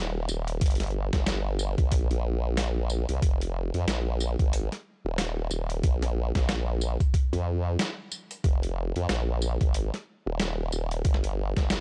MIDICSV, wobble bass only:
0, 0, Header, 1, 2, 480
1, 0, Start_track
1, 0, Key_signature, -4, "minor"
1, 0, Tempo, 652174
1, 455, Time_signature, 4, 2, 24, 8
1, 8688, End_track
2, 0, Start_track
2, 0, Title_t, "Wobble bass"
2, 0, Program_c, 0, 39
2, 0, Note_on_c, 0, 27, 91
2, 199, Note_off_c, 0, 27, 0
2, 212, Note_on_c, 0, 27, 101
2, 438, Note_off_c, 0, 27, 0
2, 453, Note_on_c, 0, 31, 98
2, 812, Note_off_c, 0, 31, 0
2, 833, Note_on_c, 0, 31, 102
2, 1291, Note_off_c, 0, 31, 0
2, 1313, Note_on_c, 0, 34, 100
2, 1532, Note_off_c, 0, 34, 0
2, 1550, Note_on_c, 0, 34, 93
2, 2250, Note_off_c, 0, 34, 0
2, 2274, Note_on_c, 0, 36, 97
2, 2358, Note_off_c, 0, 36, 0
2, 2372, Note_on_c, 0, 29, 98
2, 2731, Note_off_c, 0, 29, 0
2, 2753, Note_on_c, 0, 41, 97
2, 2838, Note_off_c, 0, 41, 0
2, 2851, Note_on_c, 0, 34, 98
2, 3210, Note_off_c, 0, 34, 0
2, 3233, Note_on_c, 0, 32, 95
2, 3452, Note_off_c, 0, 32, 0
2, 3714, Note_on_c, 0, 27, 96
2, 4039, Note_off_c, 0, 27, 0
2, 4053, Note_on_c, 0, 27, 102
2, 4278, Note_off_c, 0, 27, 0
2, 4294, Note_on_c, 0, 34, 101
2, 4652, Note_off_c, 0, 34, 0
2, 4674, Note_on_c, 0, 34, 94
2, 5132, Note_off_c, 0, 34, 0
2, 5394, Note_on_c, 0, 41, 101
2, 5718, Note_off_c, 0, 41, 0
2, 6214, Note_on_c, 0, 29, 97
2, 6572, Note_off_c, 0, 29, 0
2, 6596, Note_on_c, 0, 41, 96
2, 6679, Note_off_c, 0, 41, 0
2, 6695, Note_on_c, 0, 34, 101
2, 7052, Note_off_c, 0, 34, 0
2, 7074, Note_on_c, 0, 32, 100
2, 7292, Note_off_c, 0, 32, 0
2, 7553, Note_on_c, 0, 27, 94
2, 7878, Note_off_c, 0, 27, 0
2, 7893, Note_on_c, 0, 27, 102
2, 8118, Note_off_c, 0, 27, 0
2, 8133, Note_on_c, 0, 31, 95
2, 8491, Note_off_c, 0, 31, 0
2, 8512, Note_on_c, 0, 31, 99
2, 8688, Note_off_c, 0, 31, 0
2, 8688, End_track
0, 0, End_of_file